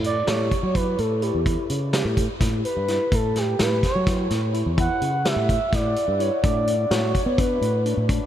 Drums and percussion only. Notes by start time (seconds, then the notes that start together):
0.04 closed hi-hat
0.27 snare, closed hi-hat
0.51 kick, closed hi-hat
0.75 kick, closed hi-hat
0.98 closed hi-hat
1.22 closed hi-hat
1.46 kick, closed hi-hat
1.70 closed hi-hat
1.93 snare, closed hi-hat
2.17 kick, closed hi-hat
2.41 kick, snare, closed hi-hat
2.65 closed hi-hat
2.88 snare, closed hi-hat
3.12 kick, closed hi-hat
3.36 snare, closed hi-hat
3.59 snare, closed hi-hat
3.83 kick, snare, closed hi-hat
4.07 kick, snare, closed hi-hat
4.30 snare, closed hi-hat
4.54 closed hi-hat
4.78 kick, closed hi-hat
5.02 closed hi-hat
5.25 snare, closed hi-hat
5.49 kick, closed hi-hat
5.73 kick, snare, closed hi-hat
5.96 closed hi-hat
6.20 closed hi-hat
6.43 kick, closed hi-hat
6.67 closed hi-hat
6.91 snare, closed hi-hat
7.15 kick, closed hi-hat
7.38 kick, closed hi-hat
7.62 closed hi-hat
7.86 closed hi-hat
8.09 kick, closed hi-hat